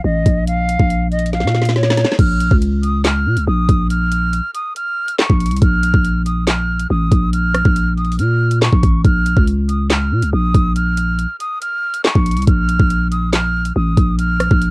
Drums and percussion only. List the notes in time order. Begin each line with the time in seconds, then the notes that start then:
0.26 kick, closed hi-hat
0.47 closed hi-hat
0.69 closed hi-hat
0.80 kick
0.90 closed hi-hat
1.12 closed hi-hat
1.19 closed hi-hat
1.26 closed hi-hat
1.33 snare, closed hi-hat
1.40 snare
1.47 snare
1.55 snare
1.62 snare, closed hi-hat
1.69 snare
1.76 snare
1.83 snare
1.90 snare
1.97 snare, closed hi-hat
2.05 snare
2.12 snare
2.19 kick, closed hi-hat, crash
2.40 closed hi-hat
2.51 kick
2.62 closed hi-hat
2.83 closed hi-hat
3.04 snare, clap, closed hi-hat
3.37 closed hi-hat
3.69 kick, closed hi-hat
3.90 closed hi-hat
4.12 closed hi-hat
4.33 closed hi-hat
4.54 closed hi-hat
4.76 closed hi-hat
5.08 closed hi-hat
5.19 snare, clap
5.30 kick
5.40 closed hi-hat
5.46 closed hi-hat
5.51 closed hi-hat
5.56 closed hi-hat
5.62 kick, closed hi-hat
5.83 closed hi-hat
5.94 kick
6.05 closed hi-hat
6.26 closed hi-hat
6.47 snare, clap, closed hi-hat
6.80 closed hi-hat
7.12 kick, closed hi-hat
7.33 closed hi-hat
7.55 cross-stick, closed hi-hat
7.65 kick
7.76 closed hi-hat
7.97 closed hi-hat
8.05 closed hi-hat
8.12 closed hi-hat
8.19 closed hi-hat
8.51 closed hi-hat
8.62 snare, clap
8.72 kick
8.83 kick, closed hi-hat
9.05 kick, closed hi-hat
9.26 closed hi-hat
9.37 kick
9.47 closed hi-hat
9.69 closed hi-hat
9.90 snare, clap, closed hi-hat
10.22 closed hi-hat
10.54 kick, closed hi-hat
10.76 closed hi-hat
10.97 closed hi-hat
11.19 closed hi-hat
11.40 closed hi-hat
11.62 closed hi-hat
11.94 closed hi-hat
12.05 snare, clap
12.15 kick
12.26 closed hi-hat
12.31 closed hi-hat
12.37 closed hi-hat
12.42 closed hi-hat
12.47 kick, closed hi-hat
12.69 closed hi-hat
12.80 kick
12.90 closed hi-hat
13.12 closed hi-hat
13.33 snare, clap, closed hi-hat
13.65 closed hi-hat
13.97 kick, closed hi-hat
14.19 closed hi-hat
14.40 cross-stick, closed hi-hat
14.51 kick
14.62 closed hi-hat